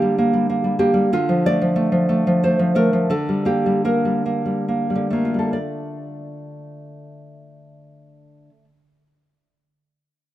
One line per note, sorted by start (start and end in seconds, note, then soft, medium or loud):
0.00 1.07 D3 medium
0.00 0.32 G3 soft
0.00 0.17 A#3 soft
0.00 0.75 G4 medium
0.18 0.48 A#3 soft
0.33 0.63 G3 soft
0.50 0.78 A#3 soft
0.64 0.93 G3 soft
0.79 1.11 A#3 soft
0.79 1.10 G4 medium
0.94 1.11 G3 medium
1.13 3.07 D3 medium
1.13 1.45 F4 medium
1.29 1.60 F3 soft
1.46 1.75 A3 soft
1.46 2.40 D5 medium
1.61 1.91 F3 soft
1.76 2.08 A3 soft
1.92 2.26 F3 soft
2.09 2.42 A3 soft
2.27 2.58 F3 soft
2.43 2.74 A3 soft
2.43 2.75 C5 medium
2.59 2.92 F3 soft
2.75 3.10 A3 soft
2.75 3.09 A#4 medium
2.93 3.10 F3 soft
3.10 4.94 D3 medium
3.10 3.45 A4 medium
3.29 3.65 G3 soft
3.45 3.83 A#3 soft
3.45 3.83 G4 medium
3.66 4.04 G3 soft
3.85 4.24 A#3 soft
3.85 5.08 A#4 medium
4.05 4.44 G3 soft
4.26 4.67 A#3 soft
4.46 4.89 G3 soft
4.68 5.10 A#3 soft
4.90 5.33 G3 soft
4.96 8.49 D3 soft
5.10 8.64 A3 soft
5.10 5.56 A#3 soft
5.25 8.79 F4 soft
5.34 5.56 G3 soft
5.39 5.52 A4 soft
5.53 9.07 D5 soft